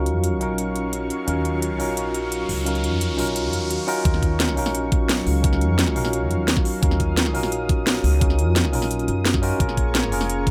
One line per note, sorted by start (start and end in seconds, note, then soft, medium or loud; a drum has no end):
0.00 0.15 C#2 loud
0.00 0.42 F#3 medium
0.00 4.01 F#3 medium
0.00 0.40 C#4 medium
0.00 0.58 C#4 medium
0.00 0.40 D#4 medium
0.00 0.06 F4 loud
0.00 3.18 F4 medium
0.00 0.93 F#4 medium
0.00 0.43 A#4 medium
0.00 0.41 F5 medium
0.00 4.01 F5 medium
0.00 4.01 C#6 medium
0.00 riser medium
0.06 0.22 F4 loud
0.06 closed hi-hat medium
0.15 0.41 F2 loud
0.24 closed hi-hat medium
0.40 1.09 A#1 loud
0.40 1.26 F#3 medium
0.40 1.25 C#4 medium
0.40 1.25 D#4 medium
0.40 1.26 A#4 medium
0.40 1.26 F5 medium
0.40 closed hi-hat medium
0.58 0.75 C#4 medium
0.58 closed hi-hat medium
0.76 closed hi-hat medium
0.93 1.02 F#4 medium
0.93 closed hi-hat medium
1.10 1.26 C#4 medium
1.10 closed hi-hat medium
1.26 1.80 D#2 medium
1.26 1.78 F#3 medium
1.26 1.77 C#4 medium
1.26 1.44 C#4 medium
1.26 1.77 D#4 medium
1.26 1.78 A#4 medium
1.26 1.78 F5 medium
1.26 closed hi-hat medium
1.45 1.61 F4 loud
1.45 closed hi-hat medium
1.62 closed hi-hat medium
1.78 2.48 A#1 loud
1.78 2.65 F#3 medium
1.78 2.64 C#4 medium
1.78 2.64 D#4 medium
1.78 2.65 A#4 medium
1.78 2.64 F5 medium
1.78 open hi-hat medium
1.97 closed hi-hat medium
2.14 closed hi-hat medium
2.32 2.41 F#4 medium
2.32 closed hi-hat medium
2.49 2.92 C#2 medium
2.49 2.65 C#4 medium
2.49 open hi-hat medium
2.65 3.17 F#3 medium
2.65 3.16 C#4 medium
2.65 2.83 C#4 medium
2.65 3.16 D#4 medium
2.65 3.17 A#4 medium
2.65 3.16 F5 medium
2.65 closed hi-hat medium
2.75 closed hi-hat soft
2.84 2.99 F4 loud
2.84 closed hi-hat medium
2.92 3.18 F2 loud
3.01 closed hi-hat medium
3.17 3.53 A#1 loud
3.17 3.86 F#3 medium
3.17 3.85 C#4 medium
3.17 3.86 D#4 medium
3.17 3.86 F4 medium
3.17 3.87 A#4 medium
3.17 open hi-hat medium
3.27 closed hi-hat soft
3.36 3.52 C#4 medium
3.36 closed hi-hat medium
3.53 3.62 F#2 loud
3.53 closed hi-hat medium
3.62 3.77 D#2 loud
3.70 3.80 F#4 medium
3.70 closed hi-hat medium
3.87 4.02 C#4 loud
3.87 4.03 C#4 medium
3.87 4.03 D#4 medium
3.87 4.03 F4 medium
3.87 4.03 F#4 medium
3.87 4.03 A#4 loud
3.87 open hi-hat medium
4.04 4.57 D#2 loud
4.04 9.56 F#3 medium
4.04 4.55 F#3 medium
4.04 4.54 C#4 medium
4.04 4.22 C#4 medium
4.04 4.55 D#4 medium
4.04 4.55 F4 medium
4.04 4.56 A#4 medium
4.04 9.56 F5 medium
4.04 6.80 C#6 medium
4.04 kick loud
4.04 closed hi-hat medium
4.14 snare soft
4.22 4.38 F4 loud
4.22 kick medium
4.22 closed hi-hat medium
4.40 snare loud
4.40 closed hi-hat loud
4.49 snare soft
4.56 5.25 A#1 loud
4.56 5.42 F#3 medium
4.56 5.41 C#4 medium
4.56 5.41 D#4 medium
4.56 5.43 A#4 medium
4.56 5.42 F5 medium
4.56 open hi-hat medium
4.66 snare medium
4.75 4.91 C#4 medium
4.75 closed hi-hat medium
4.92 kick loud
4.92 closed hi-hat medium
5.09 5.19 F#4 medium
5.09 snare loud
5.09 closed hi-hat loud
5.27 5.70 C#2 loud
5.27 5.42 C#4 medium
5.27 open hi-hat medium
5.42 5.94 F#3 medium
5.42 5.93 C#4 medium
5.42 5.60 C#4 medium
5.42 5.93 D#4 medium
5.42 5.95 A#4 medium
5.42 5.94 F5 medium
5.42 kick loud
5.42 closed hi-hat loud
5.53 snare soft
5.61 5.77 F4 loud
5.61 closed hi-hat medium
5.70 5.96 F2 loud
5.79 snare loud
5.79 closed hi-hat medium
5.87 snare medium
5.95 6.31 A#1 loud
5.95 6.81 F#3 medium
5.95 6.80 C#4 medium
5.95 6.80 D#4 medium
5.95 6.81 A#4 medium
5.95 6.81 F5 medium
5.95 open hi-hat medium
6.05 snare soft
6.13 6.30 C#4 medium
6.13 closed hi-hat medium
6.31 6.39 F#2 loud
6.31 closed hi-hat medium
6.39 6.55 D#2 loud
6.48 snare loud
6.48 closed hi-hat medium
6.57 kick loud
6.57 snare medium
6.65 6.81 C#4 medium
6.65 open hi-hat medium
6.81 7.35 D#2 medium
6.81 7.33 F#3 medium
6.81 7.32 C#4 medium
6.81 6.99 C#4 medium
6.81 7.32 D#4 medium
6.81 7.33 A#4 medium
6.81 7.33 F5 medium
6.81 9.57 D#6 medium
6.81 kick loud
6.81 closed hi-hat medium
6.91 snare soft
7.00 7.16 F4 loud
7.00 kick medium
7.00 closed hi-hat medium
7.17 snare loud
7.17 closed hi-hat medium
7.26 snare soft
7.33 8.03 A#1 loud
7.33 8.20 F#3 medium
7.33 8.18 C#4 medium
7.33 8.19 D#4 medium
7.33 8.20 A#4 medium
7.33 8.19 F5 medium
7.33 open hi-hat medium
7.43 snare soft
7.52 7.68 C#4 medium
7.52 closed hi-hat medium
7.69 kick loud
7.69 closed hi-hat medium
7.87 7.96 F#4 medium
7.87 snare loud
7.87 closed hi-hat medium
8.04 8.47 C#2 loud
8.04 8.20 C#4 medium
8.04 open hi-hat medium
8.20 8.72 F#3 medium
8.20 8.71 C#4 medium
8.20 8.38 C#4 medium
8.20 8.71 D#4 medium
8.20 8.72 A#4 medium
8.20 8.71 F5 medium
8.20 kick loud
8.20 closed hi-hat medium
8.30 snare soft
8.39 8.54 F4 loud
8.39 closed hi-hat medium
8.47 8.73 F2 loud
8.56 snare loud
8.56 closed hi-hat medium
8.65 snare soft
8.72 9.07 A#1 loud
8.72 9.41 F#3 medium
8.72 9.40 C#4 medium
8.72 9.41 D#4 medium
8.72 9.41 F4 medium
8.72 9.42 A#4 medium
8.72 open hi-hat medium
8.82 snare soft
8.91 9.07 C#4 medium
8.91 closed hi-hat medium
8.99 closed hi-hat soft
9.08 9.50 F#2 medium
9.08 closed hi-hat medium
9.25 9.41 F#4 medium
9.25 snare loud
9.25 closed hi-hat medium
9.34 kick loud
9.34 snare medium
9.42 9.58 C#4 loud
9.42 9.58 D#4 medium
9.42 9.58 F4 medium
9.42 9.58 F#4 medium
9.42 9.58 A#4 loud
9.42 open hi-hat medium
9.59 10.12 A#1 medium
9.59 10.09 A#3 medium
9.59 10.10 C#4 medium
9.59 9.77 C#4 medium
9.59 10.10 F4 medium
9.59 10.10 G#4 medium
9.59 10.51 A#4 medium
9.59 10.11 A#4 medium
9.59 10.51 G#5 medium
9.59 10.51 C#6 medium
9.59 kick loud
9.59 closed hi-hat medium
9.69 snare soft
9.77 9.93 G#4 loud
9.77 kick medium
9.77 closed hi-hat medium
9.95 snare loud
9.95 closed hi-hat medium
10.03 snare soft
10.10 10.51 F1 loud
10.10 10.51 A#3 medium
10.10 10.51 C#4 medium
10.10 10.51 F4 medium
10.10 10.51 G#4 medium
10.10 10.51 A#4 medium
10.10 open hi-hat medium
10.21 snare soft
10.29 10.46 C#4 medium
10.29 closed hi-hat medium
10.47 kick loud
10.47 closed hi-hat medium